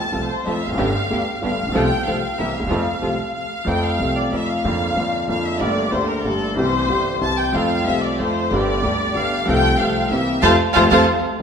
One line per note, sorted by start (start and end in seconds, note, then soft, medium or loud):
0.00 0.27 A5 medium
0.12 0.26 C2 medium
0.12 0.27 C2 soft
0.12 0.26 C3 soft
0.12 0.26 F3 soft
0.12 0.26 A3 soft
0.12 0.26 C4 soft
0.12 0.26 F4 soft
0.12 0.26 A4 soft
0.12 0.27 A4 soft
0.29 0.45 C5 medium
0.45 0.59 F2 medium
0.45 0.60 F2 soft
0.45 0.59 F3 medium
0.45 0.59 A3 soft
0.45 0.59 C4 soft
0.45 0.60 C4 soft
0.45 0.59 F4 soft
0.45 0.59 A4 soft
0.45 0.60 A4 soft
0.45 0.61 E5 medium
0.62 1.42 F5 medium
0.67 0.70 E1 soft
0.67 0.70 E2 soft
0.67 0.74 F2 medium
0.71 0.74 F1 medium
0.71 0.78 F#2 medium
0.75 0.79 F#1 medium
0.75 0.91 G1 medium
0.75 0.92 G1 medium
0.75 0.92 G2 medium
0.75 0.91 D3 medium
0.75 0.92 G3 medium
0.75 0.91 B3 medium
0.75 0.92 B3 medium
0.75 0.91 D4 medium
0.75 0.91 G4 medium
0.75 0.92 G4 medium
1.10 1.24 D2 soft
1.10 1.24 D2 medium
1.10 1.24 D3 soft
1.10 1.24 G3 soft
1.10 1.24 B3 soft
1.10 1.24 D4 soft
1.10 1.24 G4 soft
1.42 1.56 G1 medium
1.42 1.57 G1 medium
1.42 1.56 G2 soft
1.42 1.55 D3 soft
1.42 1.56 G3 soft
1.42 1.56 B3 soft
1.42 1.56 D4 soft
1.42 1.56 G4 soft
1.42 1.56 G4 medium
1.42 1.73 F5 medium
1.63 1.66 A1 soft
1.63 1.67 A1 soft
1.68 1.71 A#1 medium
1.68 1.75 B1 medium
1.74 1.88 C2 medium
1.74 1.88 C3 medium
1.74 1.88 F3 medium
1.74 1.88 A3 medium
1.74 1.87 C4 medium
1.74 1.88 C4 medium
1.74 1.88 F4 medium
1.74 1.87 A4 medium
1.74 1.88 A4 medium
1.74 2.06 G5 loud
2.07 2.20 C2 soft
2.07 2.20 C2 medium
2.07 2.20 C3 soft
2.07 2.20 F3 soft
2.07 2.20 A3 soft
2.07 2.20 C4 soft
2.07 2.20 F4 soft
2.07 2.20 A4 medium
2.07 2.20 A4 soft
2.07 2.39 F5 medium
2.38 2.52 C2 soft
2.38 2.52 C2 medium
2.38 2.52 C3 medium
2.38 2.52 E3 soft
2.38 2.52 A#3 soft
2.38 2.52 C4 soft
2.38 2.53 C4 soft
2.38 2.51 E4 soft
2.38 2.53 G4 soft
2.38 2.52 A#4 soft
2.38 2.54 E5 medium
2.54 3.33 F5 medium
2.59 2.62 D2 soft
2.59 2.63 D2 soft
2.59 2.66 D#2 medium
2.59 2.66 D#2 soft
2.67 2.70 E2 medium
2.67 2.71 E2 medium
2.67 2.83 C4 medium
2.67 2.83 F4 medium
2.67 2.83 A4 medium
2.71 2.84 F2 medium
2.71 2.84 F3 medium
2.71 2.84 A3 medium
2.71 2.84 C4 medium
2.71 2.84 A4 medium
3.02 3.16 C2 soft
3.02 3.16 C2 medium
3.02 3.16 C3 soft
3.02 3.16 F3 soft
3.02 3.16 A3 soft
3.02 3.16 C4 soft
3.02 3.16 F4 soft
3.02 3.16 A4 medium
3.02 3.16 A4 soft
3.34 3.65 F5 medium
3.65 3.98 F2 medium
3.65 3.97 F3 medium
3.65 3.98 A3 medium
3.65 3.99 C4 soft
3.65 3.84 G5 medium
3.69 3.99 A4 medium
3.85 4.17 F5 medium
3.99 4.31 C2 medium
3.99 4.31 C2 soft
3.99 4.31 C3 soft
3.99 4.29 F3 soft
3.99 4.30 A3 soft
3.99 4.32 C4 soft
3.99 4.32 A4 soft
4.16 4.32 D5 medium
4.32 4.63 F2 soft
4.32 4.63 F3 soft
4.32 4.63 A3 soft
4.32 4.64 C4 soft
4.32 4.64 A4 soft
4.32 4.49 E5 medium
4.47 5.27 F5 medium
4.64 4.95 F2 medium
4.64 4.93 D3 medium
4.64 4.95 F3 medium
4.64 4.96 A#3 medium
4.64 4.97 F4 medium
4.95 5.27 F2 medium
4.95 5.27 F2 soft
4.95 5.26 D3 soft
4.95 5.27 F3 soft
4.95 5.27 A#3 soft
4.99 5.28 F4 soft
5.27 5.59 F2 soft
5.27 5.56 D3 soft
5.27 5.59 F3 soft
5.27 5.60 A#3 soft
5.27 5.60 F4 soft
5.27 5.43 F5 medium
5.44 5.60 E5 medium
5.58 5.91 G1 medium
5.58 5.91 G2 medium
5.58 5.89 D3 medium
5.58 5.90 A3 medium
5.58 5.91 A#3 medium
5.58 5.92 D5 loud
5.62 5.92 G4 medium
5.91 6.23 D2 medium
5.91 6.23 D2 soft
5.91 6.21 D3 soft
5.91 6.22 A3 soft
5.91 6.23 A#3 soft
5.91 6.24 G4 soft
5.91 6.08 C5 medium
6.08 6.24 A#4 medium
6.23 6.55 G1 medium
6.23 6.55 G1 soft
6.23 6.55 G2 soft
6.23 6.54 D3 soft
6.23 6.55 A3 soft
6.23 6.55 A#3 soft
6.23 6.56 A4 medium
6.27 6.56 G4 soft
6.55 6.87 C2 medium
6.55 6.88 C3 medium
6.55 6.85 E3 medium
6.55 6.87 G3 medium
6.55 6.88 C4 medium
6.55 7.17 C5 loud
6.59 6.89 G4 medium
6.87 7.20 G1 soft
6.87 7.20 G2 soft
6.87 7.18 E3 soft
6.87 7.19 G3 soft
6.87 7.20 C4 soft
6.91 7.21 G4 soft
7.19 7.52 C2 soft
7.19 7.52 C3 soft
7.19 7.51 E3 soft
7.19 7.52 G3 soft
7.19 7.52 C4 soft
7.19 7.53 G4 soft
7.19 7.37 A5 loud
7.37 7.53 G5 medium
7.52 7.85 F2 medium
7.52 7.84 F3 medium
7.52 7.85 A3 medium
7.52 7.85 C4 medium
7.52 7.85 C4 soft
7.52 7.85 F4 medium
7.52 7.85 A4 medium
7.52 7.86 A4 medium
7.52 7.86 F5 loud
7.84 8.17 C2 soft
7.84 8.18 C2 soft
7.84 8.17 C3 soft
7.84 8.16 F3 soft
7.84 8.17 A3 soft
7.84 8.17 C4 soft
7.84 8.18 C4 soft
7.84 8.17 F4 soft
7.84 8.17 A4 soft
7.84 8.01 E5 loud
7.89 8.18 A4 soft
8.01 8.18 D5 medium
8.18 8.49 F2 soft
8.18 8.50 F2 soft
8.18 8.50 F3 soft
8.18 8.50 A3 soft
8.18 8.49 C4 soft
8.18 8.50 C4 soft
8.18 8.49 F4 soft
8.18 8.49 A4 soft
8.18 8.50 C5 medium
8.22 8.51 A4 soft
8.50 8.81 G1 medium
8.50 8.82 G1 medium
8.50 8.82 G2 medium
8.50 8.80 D3 medium
8.50 8.81 G3 medium
8.50 8.81 B3 medium
8.50 8.82 B3 medium
8.50 8.81 D4 medium
8.50 8.81 G4 medium
8.50 9.15 D5 loud
8.55 8.83 G4 medium
8.82 9.13 D2 soft
8.82 9.14 D2 soft
8.82 9.11 D3 soft
8.82 9.13 G3 soft
8.82 9.13 B3 soft
8.82 9.14 B3 soft
8.82 9.13 D4 soft
8.82 9.13 G4 soft
8.82 9.14 G4 soft
9.13 9.45 G1 medium
9.13 9.46 G1 soft
9.13 9.45 G2 soft
9.13 9.44 D3 soft
9.13 9.45 G3 soft
9.13 9.45 B3 soft
9.13 9.46 B3 soft
9.13 9.45 D4 soft
9.13 9.45 G4 soft
9.13 9.46 G4 soft
9.13 9.47 F5 loud
9.46 9.77 C2 medium
9.46 9.78 C2 medium
9.46 9.77 C3 medium
9.46 9.76 F3 medium
9.46 9.77 A3 medium
9.46 9.77 C4 medium
9.46 9.78 C4 medium
9.46 9.77 F4 medium
9.46 9.77 A4 medium
9.46 9.79 G5 loud
9.50 9.78 A4 medium
9.78 10.10 C2 medium
9.78 10.10 C2 soft
9.78 10.09 C3 medium
9.78 10.09 F3 soft
9.78 10.09 A3 soft
9.78 10.09 C4 soft
9.78 10.10 C4 soft
9.78 10.09 F4 soft
9.78 10.09 A4 medium
9.78 10.10 A4 soft
9.78 10.10 F5 loud
10.09 10.41 C2 soft
10.09 10.41 C3 soft
10.09 10.40 E3 soft
10.09 10.41 A#3 soft
10.09 10.41 C4 soft
10.09 10.42 C4 soft
10.09 10.41 E4 soft
10.09 10.41 A#4 medium
10.09 10.43 E5 loud
10.13 10.42 G4 soft
10.41 10.54 F2 loud
10.41 10.53 C3 medium
10.41 10.53 F3 medium
10.41 10.53 A3 medium
10.41 10.53 C4 medium
10.41 10.53 F4 medium
10.41 10.53 A4 loud
10.41 10.52 C5 loud
10.41 10.52 F5 loud
10.41 10.52 A5 loud
10.74 10.87 F2 loud
10.74 10.86 C3 loud
10.74 10.86 F3 loud
10.74 10.85 A3 medium
10.74 10.85 C4 medium
10.74 10.85 F4 loud
10.74 10.85 A4 medium
10.74 10.85 C5 medium
10.74 10.85 F5 medium
10.74 10.85 A5 medium
10.90 11.03 F2 loud
10.90 11.01 C3 medium
10.90 11.01 F3 medium
10.90 11.02 A3 medium
10.90 11.02 C4 loud
10.90 11.02 F4 medium
10.90 11.02 A4 medium
10.90 11.01 C5 medium
10.90 11.01 F5 medium
10.90 11.01 A5 loud